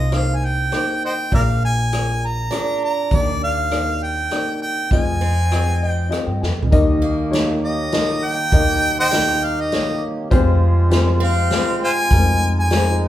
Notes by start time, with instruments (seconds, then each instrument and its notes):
Already playing: upright bass C2, grand piano C2 C3 A#3 D#4 G4 C5, steel-string acoustic guitar F4, harmonica D#5
0.11 grand piano A#3 D#4 G4 C5, harmonica F5, cross-stick, closed hi-hat
0.36 harmonica G#5
0.45 harmonica G5
0.72 grand piano A#3 D#4 G4 C5, cross-stick, closed hi-hat
1.05 harmonica C5 D#5 G5
1.32 upright bass A#1, grand piano A#1 A#2 A#3 F4 G#4 D5, harmonica A#4 D5 F5, kick, closed hi-hat
1.65 harmonica G#5
1.92 grand piano A#3 F4 G#4 D5, cross-stick, closed hi-hat
2.26 harmonica A#5
2.51 grand piano A#3 F4 G#4 D5, steel-string acoustic guitar D4, cross-stick, closed hi-hat
2.84 harmonica A#5
3.11 upright bass D#2, grand piano D#2 D#3 A#3 D#4 G4 D5, kick, closed hi-hat
3.16 harmonica D5
3.44 harmonica F5
3.71 grand piano A#3 D#4 G4 D5, cross-stick, closed hi-hat
4.03 harmonica G5
4.31 grand piano A#3 D#4 G4 D5, cross-stick, closed hi-hat
4.62 harmonica G5
4.91 grand piano F1 F2 C4 F4 G#4 D#5, upright bass F2, harmonica G#5, kick, closed hi-hat
5.21 steel-string acoustic guitar C4
5.51 grand piano C4 F4 G#4 D#5, cross-stick, closed hi-hat
5.83 grand piano D#5
5.88 harmonica G5
6.09 grand piano C4 F4 G#4 D#5 F5, cross-stick, closed hi-hat
6.26 upright bass G2, grand piano G5
6.41 upright bass F2, grand piano G#5, snare
6.58 upright bass D#2
6.63 floor tom
6.71 upright bass D#2, grand piano D#2 D#3 G3 A#3 D#4 A#4 D#5, harmonium D#3 A#3 G4, kick, closed hi-hat
7.02 steel-string acoustic guitar A#3
7.30 grand piano G3 A#3 D#4 A#4 C#5, snare, closed hi-hat
7.64 harmonica D#5
7.92 grand piano G3 A#3 D#4 A#4 D#5, snare, closed hi-hat
8.25 harmonica G5
8.52 upright bass D#2, grand piano D#2 D#3 G3 A#3 D#4 A#4 D#5, kick, closed hi-hat
9.00 harmonica C5 D#5 G5
9.11 grand piano G3 A#3 D#4 A#4 D#5, steel-string acoustic guitar D#4, snare, closed hi-hat
9.44 harmonica F5
9.61 harmonica D#5
9.71 grand piano G3 A#3 D#4 A#4 C#5, snare, closed hi-hat
10.30 grand piano F1 F2 C4 F4 G4 G#4 C5, upright bass F2, harmonium G#3 F4, kick, closed hi-hat
10.90 grand piano C4 F4 G4 G#4 C5, snare, closed hi-hat
11.20 steel-string acoustic guitar C4, harmonica F5
11.51 grand piano C4 F4 G4 G#4 C5, snare, closed hi-hat
11.84 harmonica C5 F5 G#5
12.10 grand piano F1 F2 G#3 C4 F4 G#4 A#4, upright bass F2, harmonium D#4, kick, closed hi-hat
12.59 harmonica G#5
12.70 grand piano G#3 C4 F4 G#4 C5, snare, closed hi-hat